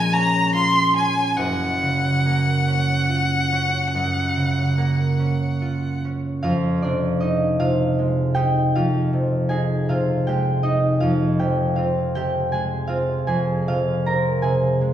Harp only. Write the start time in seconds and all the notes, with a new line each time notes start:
Already playing: A#1 A#2 F3 G#3 C#4 F4
0.14 C#4
0.54 F4
0.95 C#4
1.37 F#1 F#2
1.83 C#3
2.26 A#3
2.67 C#4
3.10 F4
3.52 C#4
3.95 F#2
4.36 C#3
4.78 A#3
5.19 C#4
5.62 F4
6.05 C#4
6.43 F2 F4 F5
6.82 C3 D4 D5
7.20 D#4 D#5
7.60 C3 F4 F5
7.99 G#3
8.35 D#4 G4 G5
8.75 F2 F4 F5
9.13 C3
9.49 D#4 G#4 G#5
9.89 C3 F4 F5
10.27 G#3 G4 G5
10.63 D#4 D#5
11.00 F2 F4 F5
11.39 C3 G4 G5
11.76 C4 F4 F5
12.15 C3 G4 G5
12.52 G#3 G#4 G#5
12.87 C4 F4 F5
13.27 F2 G#4 G#5
13.68 C3 F4 F5
14.06 C4 A#4 A#5
14.42 C3 G#4 G#5
14.81 G#3